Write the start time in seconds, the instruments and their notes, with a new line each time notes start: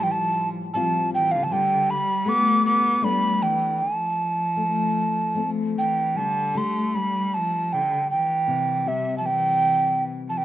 Already playing: nylon-string guitar A2
0.00 cello F3, nylon-string guitar G3, tin whistle G5
0.06 cello E3
0.11 cello F3, tin whistle A5
0.74 cello F3, nylon-string guitar G3 C4 F4, tin whistle A5
1.14 cello E3, tin whistle G5
1.31 cello D3, tin whistle F5
1.43 cello F3, tin whistle A5
1.51 cello D3, nylon-string guitar G3, tin whistle G5
1.90 cello G3, tin whistle B5
2.26 nylon-string guitar A3, cello B3, tin whistle D6
2.65 cello B3, tin whistle D6
3.02 cello G3, nylon-string guitar A3 B3 D4, tin whistle B5
3.41 cello E3, tin whistle G5
3.79 cello F3, tin whistle A5
4.57 nylon-string guitar A3
5.35 nylon-string guitar A3 C4
5.78 cello E3, tin whistle G5
6.15 cello D3, nylon-string guitar G3, tin whistle A5
6.54 nylon-string guitar A3 D4 G4, cello A3, tin whistle C6
6.94 cello G3, nylon-string guitar D4, tin whistle B5
7.34 cello F3, tin whistle A5
7.73 cello D3, tin whistle G5
8.10 cello E3, tin whistle G5
8.48 nylon-string guitar C3
8.85 cello C3, nylon-string guitar G3 C4 G4, tin whistle E5
9.18 cello F3, tin whistle A5
9.24 cello E3, nylon-string guitar C4, tin whistle G5
10.28 cello F3, tin whistle A5
10.38 cello E3, tin whistle G5